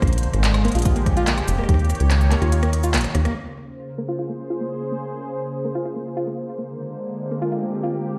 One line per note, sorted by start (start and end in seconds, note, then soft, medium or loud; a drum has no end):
0.00 0.27 A#1 loud
0.00 1.69 D3 medium
0.00 0.69 A#3 medium
0.00 1.69 C5 medium
0.00 kick loud
0.00 cross-stick medium
0.00 closed hi-hat soft
0.07 closed hi-hat medium
0.13 closed hi-hat medium
0.17 1.69 G#3 medium
0.17 closed hi-hat medium
0.23 closed hi-hat soft
0.33 0.69 G#1 medium
0.33 cross-stick medium
0.33 closed hi-hat soft
0.44 clap loud
0.44 closed hi-hat medium
0.54 cross-stick medium
0.54 closed hi-hat soft
0.65 0.74 A#3 loud
0.65 closed hi-hat soft
0.68 closed hi-hat soft
0.72 1.42 A#1 medium
0.72 3.36 G4 medium
0.72 closed hi-hat soft
0.75 0.79 F4 loud
0.75 closed hi-hat soft
0.79 closed hi-hat medium
0.82 cross-stick medium
0.82 closed hi-hat medium
0.85 0.92 F4 medium
0.85 kick loud
0.85 closed hi-hat medium
0.85 cabasa medium
0.96 1.00 A#3 medium
0.96 closed hi-hat soft
1.06 kick medium
1.06 cross-stick medium
1.06 closed hi-hat medium
1.17 1.23 F4 loud
1.17 closed hi-hat soft
1.27 1.31 A#3 medium
1.27 clap loud
1.27 closed hi-hat medium
1.38 cross-stick medium
1.38 closed hi-hat soft
1.48 1.61 F1 medium
1.48 closed hi-hat medium
1.48 cabasa medium
1.58 1.65 A#3 medium
1.58 cross-stick soft
1.64 cross-stick soft
1.69 1.94 D#2 loud
1.69 3.36 D#3 medium
1.69 kick medium
1.69 cross-stick medium
1.69 closed hi-hat medium
1.74 cross-stick medium
1.79 3.35 C#5 medium
1.79 closed hi-hat soft
1.85 closed hi-hat soft
1.90 cross-stick medium
1.90 closed hi-hat soft
1.90 cabasa medium
1.95 closed hi-hat soft
2.00 2.36 C#2 loud
2.00 8.19 A#3 medium
2.00 closed hi-hat soft
2.11 cross-stick medium
2.11 clap loud
2.11 closed hi-hat medium
2.21 closed hi-hat soft
2.31 2.41 A#3 loud
2.31 clap medium
2.31 closed hi-hat medium
2.42 2.95 D#2 medium
2.42 2.46 F4 loud
2.42 cross-stick medium
2.42 closed hi-hat soft
2.52 2.58 F4 medium
2.52 closed hi-hat medium
2.63 2.66 A#3 medium
2.63 cross-stick medium
2.63 closed hi-hat soft
2.73 closed hi-hat medium
2.83 2.90 F4 loud
2.83 closed hi-hat soft
2.83 cabasa medium
2.94 3.07 A#1 medium
2.94 2.98 A#3 medium
2.94 cross-stick medium
2.94 clap loud
2.94 closed hi-hat medium
2.97 closed hi-hat medium
3.01 cross-stick medium
3.01 closed hi-hat medium
3.04 closed hi-hat soft
3.15 3.28 D#2 medium
3.15 cross-stick medium
3.15 closed hi-hat medium
3.25 3.31 A#3 medium
3.25 cross-stick medium
3.25 closed hi-hat soft
3.36 6.69 C#3 medium
3.53 7.36 C5 medium
3.69 6.69 G#4 medium
3.98 4.07 A#3 medium
4.08 4.12 F4 medium
4.19 4.25 F4 medium
4.29 4.33 A#3 medium
4.50 4.56 F4 medium
4.61 4.64 A#3 medium
4.92 4.98 A#3 medium
5.65 5.74 A#3 medium
5.75 5.79 F4 loud
5.86 5.92 F4 medium
5.96 6.00 A#3 medium
6.17 6.23 F4 loud
6.27 6.31 A#3 medium
6.58 6.65 A#3 medium
6.69 8.19 D3 medium
6.74 8.19 G#3 medium
7.17 8.19 C4 medium
7.31 7.41 A#3 loud
7.42 7.46 F4 loud
7.42 8.19 G4 medium
7.52 7.58 F4 medium
7.63 7.66 A#3 medium
7.83 7.90 F4 medium
7.94 7.98 A#3 medium